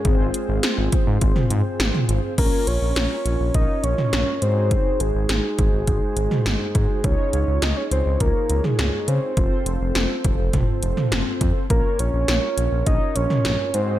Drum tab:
CC |----------------|x---------------|----------------|----------------|
HH |x-x-x-x-x-x-x-x-|x-x-x-x-x-x-x-x-|x-x-x-x-x-x-x-x-|x-x-x-x-x-x-x-x-|
SD |----o-------o---|----o-------o---|----o-------o---|----o-------o---|
T2 |---------o---o--|-----------o----|-----------o----|-----------o----|
BD |o-----o-o-------|o-------o-------|o-----o-o-----o-|o-------o-------|

CC |----------------|----------------|
HH |x-x-x-x-x-x-x-x-|x-x-x-x-x-x-x-x-|
SD |----o-------o---|----o-------o---|
T2 |--------o--o----|-----------o----|
BD |o-----o-o-----o-|o-------o-------|